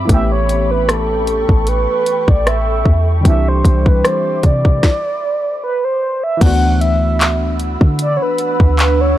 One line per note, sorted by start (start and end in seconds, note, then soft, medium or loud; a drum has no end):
0.00 4.79 B5 medium
0.05 3.19 E3 medium
0.05 3.20 A3 medium
0.09 1.45 A1 loud
0.09 3.21 B3 medium
0.09 3.22 C#4 medium
0.09 3.22 A4 medium
0.09 0.30 E5 loud
0.09 3.22 G5 medium
0.09 3.22 C#6 loud
0.09 kick loud
0.09 closed hi-hat medium
0.14 3.24 G4 medium
0.32 0.73 C#5 medium
0.49 closed hi-hat medium
0.71 0.91 B4 medium
0.89 1.70 A4 medium
0.89 cross-stick loud
0.89 closed hi-hat medium
1.27 closed hi-hat medium
1.49 1.87 A1 loud
1.49 kick medium
1.67 1.89 B4 medium
1.67 closed hi-hat medium
1.90 2.31 B4 medium
2.06 closed hi-hat medium
2.28 2.83 A1 loud
2.28 2.49 D5 loud
2.28 kick loud
2.47 3.08 E5 loud
2.47 cross-stick loud
2.47 closed hi-hat medium
2.85 3.23 E2 loud
2.85 kick medium
3.21 3.30 D3 medium
3.21 4.79 G3 medium
3.21 4.81 C5 medium
3.21 4.81 E5 medium
3.25 3.63 C2 loud
3.25 4.81 E3 medium
3.25 4.80 C4 medium
3.25 4.81 D4 medium
3.25 3.50 E5 loud
3.25 4.81 D6 loud
3.25 kick loud
3.25 closed hi-hat medium
3.30 4.82 G4 medium
3.48 3.89 C5 medium
3.64 4.02 C2 loud
3.64 kick loud
3.64 closed hi-hat medium
3.86 4.08 B4 medium
3.86 kick medium
4.05 4.47 C5 loud
4.05 cross-stick loud
4.05 closed hi-hat medium
4.43 4.81 C3 loud
4.43 5.63 D5 loud
4.43 kick medium
4.43 closed hi-hat medium
4.65 kick medium
4.83 kick loud
4.83 snare medium
5.64 5.86 B4 medium
5.84 6.25 C5 medium
6.23 6.43 E5 loud
6.37 9.18 E3 medium
6.37 9.18 A3 medium
6.37 9.18 D4 medium
6.37 9.18 F#5 medium
6.37 9.18 B5 medium
6.37 9.18 E6 medium
6.41 7.77 D2 loud
6.41 9.18 B3 medium
6.41 9.18 D4 medium
6.41 6.82 F#5 loud
6.41 kick loud
6.41 closed hi-hat medium
6.41 crash loud
6.46 9.18 F#4 medium
6.81 7.60 E5 loud
6.81 closed hi-hat medium
7.21 clap loud
7.21 closed hi-hat medium
7.59 closed hi-hat medium
7.81 8.19 D3 loud
7.81 kick medium
7.99 8.18 D5 medium
7.99 closed hi-hat medium
8.17 8.24 C#5 medium
8.22 8.39 B4 medium
8.38 8.76 B4 medium
8.38 closed hi-hat medium
8.60 9.15 D2 loud
8.60 kick medium
8.79 9.02 B4 medium
8.79 clap loud
8.79 closed hi-hat medium
9.01 9.18 C#5 medium